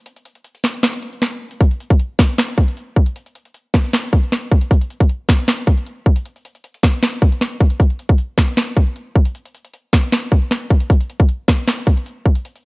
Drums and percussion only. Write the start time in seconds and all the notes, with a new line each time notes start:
0.06 closed hi-hat
0.17 closed hi-hat
0.26 closed hi-hat
0.36 closed hi-hat
0.45 closed hi-hat
0.55 closed hi-hat
0.64 finger snap, snare, open hi-hat
0.74 closed hi-hat
0.83 finger snap, snare, closed hi-hat
0.93 closed hi-hat
1.03 closed hi-hat
1.13 closed hi-hat
1.22 finger snap, snare, closed hi-hat
1.51 closed hi-hat
1.61 kick, closed hi-hat
1.71 closed hi-hat
1.80 closed hi-hat
1.90 kick, closed hi-hat
1.99 closed hi-hat
2.19 finger snap, kick, snare, closed hi-hat
2.29 closed hi-hat
2.38 finger snap, snare, closed hi-hat
2.48 closed hi-hat
2.58 kick, closed hi-hat
2.68 closed hi-hat
2.77 closed hi-hat
2.96 kick
3.06 closed hi-hat
3.16 closed hi-hat
3.26 closed hi-hat
3.35 closed hi-hat
3.45 closed hi-hat
3.54 closed hi-hat
3.74 finger snap, kick, snare, open hi-hat
3.84 closed hi-hat
3.93 finger snap, snare, closed hi-hat
4.03 closed hi-hat
4.12 kick, closed hi-hat
4.23 closed hi-hat
4.32 finger snap, snare, closed hi-hat
4.51 kick
4.61 closed hi-hat
4.70 kick, closed hi-hat
4.81 closed hi-hat
4.90 closed hi-hat
5.00 kick, closed hi-hat
5.09 closed hi-hat
5.29 finger snap, kick, snare, closed hi-hat
5.39 closed hi-hat
5.48 finger snap, snare, closed hi-hat
5.58 closed hi-hat
5.67 kick, closed hi-hat
5.78 closed hi-hat
5.87 closed hi-hat
6.06 kick
6.16 closed hi-hat
6.25 closed hi-hat
6.36 closed hi-hat
6.45 closed hi-hat
6.55 closed hi-hat
6.64 closed hi-hat
6.74 closed hi-hat
6.83 finger snap, kick, snare, open hi-hat
6.94 closed hi-hat
7.03 finger snap, snare, closed hi-hat
7.13 closed hi-hat
7.22 kick, closed hi-hat
7.32 closed hi-hat
7.41 finger snap, snare, closed hi-hat
7.61 kick
7.71 closed hi-hat
7.80 kick, closed hi-hat
7.91 closed hi-hat
8.00 closed hi-hat
8.10 kick, closed hi-hat
8.19 closed hi-hat
8.38 finger snap, kick, snare, closed hi-hat
8.48 closed hi-hat
8.57 finger snap, snare, closed hi-hat
8.68 closed hi-hat
8.77 kick, closed hi-hat
8.87 closed hi-hat
8.96 closed hi-hat
9.16 kick
9.25 closed hi-hat
9.35 closed hi-hat
9.46 closed hi-hat
9.55 closed hi-hat
9.65 closed hi-hat
9.74 closed hi-hat
9.93 finger snap, kick, snare, open hi-hat
10.03 closed hi-hat
10.12 finger snap, snare, closed hi-hat
10.23 closed hi-hat
10.32 kick, closed hi-hat
10.42 closed hi-hat
10.51 finger snap, snare, closed hi-hat
10.70 kick
10.80 closed hi-hat
10.90 kick, closed hi-hat
11.00 closed hi-hat
11.09 closed hi-hat
11.19 kick, closed hi-hat
11.28 closed hi-hat
11.48 finger snap, kick, snare, closed hi-hat
11.58 closed hi-hat
11.67 finger snap, snare, closed hi-hat
11.77 closed hi-hat
11.87 kick, closed hi-hat
11.97 closed hi-hat
12.06 closed hi-hat
12.25 kick
12.35 closed hi-hat
12.45 closed hi-hat
12.55 closed hi-hat